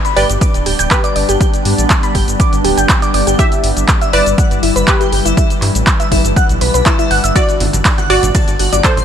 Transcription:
Already playing: G3 B3 D4
0.05 B5, closed hi-hat, shaker
0.16 G1 G4 B4 D5 G5, open hi-hat
0.30 G1, closed hi-hat, shaker
0.41 D6, kick, closed hi-hat, shaker
0.54 D1, closed hi-hat, shaker
0.66 D1 G4 G5, open hi-hat
0.79 D1 G5 G6, closed hi-hat, shaker
0.91 G4 B4, kick, clap, closed hi-hat, shaker
1.04 D5 D6, closed hi-hat, shaker
1.16 G1 D5 D6, open hi-hat
1.29 G1 G4 G5, closed hi-hat, shaker
1.41 G4 G5, kick, closed hi-hat, shaker
1.54 closed hi-hat, shaker
1.65 G2, open hi-hat
1.78 A1, closed hi-hat, shaker
1.90 kick, clap, closed hi-hat, shaker
2.03 B5, closed hi-hat, shaker
2.15 G1 G4 G5, kick, open hi-hat
2.28 G1, closed hi-hat, shaker
2.40 D6, kick, closed hi-hat, shaker
2.53 G1, closed hi-hat, shaker
2.64 D1 G4 G5, open hi-hat
2.77 G1 G5 G6, closed hi-hat, shaker
2.89 kick, clap, closed hi-hat, shaker
3.02 D5 D6, closed hi-hat, shaker
3.14 G1 D5 D6, open hi-hat
3.27 G1 G4 G5, closed hi-hat, shaker
3.39 E3 E4 G4 E5, kick, closed hi-hat, shaker
3.52 closed hi-hat, shaker
3.64 G1, open hi-hat
3.77 G1, closed hi-hat, shaker
3.88 kick, clap, closed hi-hat, shaker
4.01 E5 E6, closed hi-hat, shaker
4.13 G1 E4 B4 D5 E5, open hi-hat
4.26 G1, closed hi-hat, shaker
4.38 F#5 F#6, kick, closed hi-hat, shaker
4.51 G1, closed hi-hat, shaker
4.63 G1 E4 E5, open hi-hat
4.76 G1 B4 B5, closed hi-hat, shaker
4.87 G4 B4, kick, clap, closed hi-hat, shaker
5.01 G4 G5, closed hi-hat, shaker
5.12 G1 G4 G5, open hi-hat
5.25 G1 E4 E5, closed hi-hat, shaker
5.37 D4 E4 E5, kick, closed hi-hat, shaker
5.50 closed hi-hat, shaker
5.62 G2, clap, open hi-hat
5.75 A1, closed hi-hat, shaker
5.87 kick, clap, closed hi-hat, shaker
6.00 E5 E6, closed hi-hat, shaker
6.12 G1 E4 E5, kick, open hi-hat
6.25 G1, closed hi-hat, shaker
6.36 F#5 F#6, kick, closed hi-hat, shaker
6.49 B1, closed hi-hat, shaker
6.61 B1 B4 B5, open hi-hat
6.74 B1 B4 B5, closed hi-hat, shaker
6.86 E4 E5, kick, clap, closed hi-hat, shaker
6.99 E4 E5, closed hi-hat, shaker
7.11 G1 F#5 F#6, open hi-hat
7.24 G1 E5 E6, closed hi-hat, shaker
7.36 D3 F#3 C4 F#4 D5 F#5, kick, closed hi-hat, ride, shaker
7.49 closed hi-hat, shaker
7.60 G1, open hi-hat, high bongo, high conga
7.73 G1, closed hi-hat, low conga, shaker
7.85 kick, clap, closed hi-hat, ride, shaker
7.98 F#5 F#6, closed hi-hat, high conga, shaker
8.10 G1 F#4 D5 F#5, open hi-hat
8.23 G1, closed hi-hat, low conga, shaker
8.35 A5 A6, kick, closed hi-hat, ride, high conga, shaker
8.48 G1, closed hi-hat, shaker
8.59 G1 F#4 F#5, open hi-hat
8.73 G1 D5 D6, closed hi-hat, high bongo, high conga, shaker
8.84 A4 C5, kick, clap, closed hi-hat, ride, shaker
8.97 C5 C6, closed hi-hat, low conga, shaker

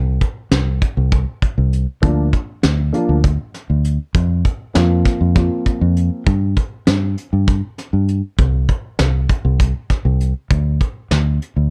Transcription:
Already playing: C2
0.21 kick, closed hi-hat
0.51 C2, snare, closed hi-hat
0.82 kick, closed hi-hat
0.97 C2
1.12 kick, closed hi-hat
1.42 kick, closed hi-hat
1.58 C2
1.73 closed hi-hat
2.02 D2 F3 A#3 D4 F4, kick, closed hi-hat
2.33 kick, closed hi-hat
2.63 D2, snare, closed hi-hat
2.93 F3 A#3 D4 F4, closed hi-hat
3.09 D2
3.24 kick, closed hi-hat
3.54 snare, closed hi-hat
3.70 D2
3.84 closed hi-hat
4.15 F2, kick, closed hi-hat
4.45 kick, closed hi-hat
4.74 F2 F3 A#3 C4 F4, snare, closed hi-hat
5.05 kick, snare, closed hi-hat
5.21 F2
5.35 F3 A#3 C4 F4, kick, snare, closed hi-hat
5.66 kick, closed hi-hat
5.81 F2
5.96 closed hi-hat
6.26 G2, kick, closed hi-hat
6.56 kick, closed hi-hat
6.87 G2, snare, closed hi-hat
7.17 closed hi-hat
7.33 G2
7.47 kick, closed hi-hat
7.78 snare, closed hi-hat
7.93 G2
8.08 closed hi-hat
8.38 C2, kick, closed hi-hat
8.69 kick, closed hi-hat
8.99 C2, snare, closed hi-hat
9.29 kick, closed hi-hat
9.45 C2
9.60 kick, closed hi-hat
9.90 kick, snare, closed hi-hat
10.05 C2
10.20 closed hi-hat
10.51 D2, kick, closed hi-hat
10.81 kick, closed hi-hat
11.11 D2, snare, closed hi-hat
11.42 closed hi-hat
11.56 D2

